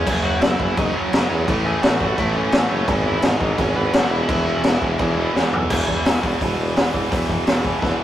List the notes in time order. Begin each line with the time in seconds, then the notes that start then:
Already playing: C#4
0.05 F#1 F#2 C#3 F#3, kick, crash
0.22 F#2 C#3 F#3 F#4 F#5
0.40 F#1 F#2 C#3 F#3 E4 E5, snare, crash
0.59 F#1 F#2 C#3 F#3, kick
0.76 F#1 F#2 C#3 F#3 D#4 D#5, kick, crash
0.94 F#2 C#3 F#3 C#4 C#5
1.12 F#1 F#2 C#3 F#3, snare, crash
1.30 E2 F#2 C#3 F#3 C#4 C#5
1.48 A1 A2 E3 A3, kick, crash
1.65 A2 E3 A3 G#4 G#5
1.82 A1 A2 E3 A3 F#4 F#5, snare, crash
2.01 A1 A2 E3 A3, kick
2.18 A1 A2 E3 A3 E4 E5, kick, crash
2.35 A2 E3 A3 C#4 C#5
2.52 A1 A2 E3 A3, snare, crash
2.69 F#1 A2 E3 A3 C#4 C#5
2.86 G#1 E2 B2 E3, kick, crash
3.04 E2 B2 E3 E4 E5
3.22 G#1 E2 B2 E3 D#4 D#5, snare, crash
3.40 G#1 E2 B2 E3, kick
3.57 G#1 E2 B2 E3 C#4, kick, crash
3.61 C#5
3.74 G#1 E2 B2 E3 B3 B4
3.91 F#1 E2 B2 E3, snare, crash
3.95 B2 E3 F#4 F#5
4.08 E1 E2 B2 E3 E4 E5
4.13 B2 E3
4.24 E2 B2 E3
4.29 E1 E2, kick, crash
4.42 E2 B2 E3
4.60 E2 B2 E3, crash
4.64 E1 B2 E3, snare
4.78 E1 E2 B2 E3
4.82 B2 E3, kick
4.98 E1 E2 B2 E3, kick, crash
5.16 E2 B2 E3
5.21 E2
5.33 E1 E2 B2 E3, snare
5.52 B1 E2 B2 E3, floor tom
5.70 E1 E2 B2 E3, kick, crash
5.88 E1, kick
6.04 E1 E2 B2 E3, snare, open hi-hat
6.22 E1 E2 B2 E3, kick
6.27 E2
6.40 E1 E2 B2 E3, kick, open hi-hat
6.59 E1
6.76 E1 E2 B2 E3, snare, open hi-hat
6.94 E1 E2 B2 E3, kick
7.11 E1 E2 B2 E3, kick, open hi-hat
7.29 E1, kick
7.47 E1 E2 B2 E3, snare, open hi-hat
7.65 E2 B2 E3, kick
7.81 E1 E2 B2 E3, kick, snare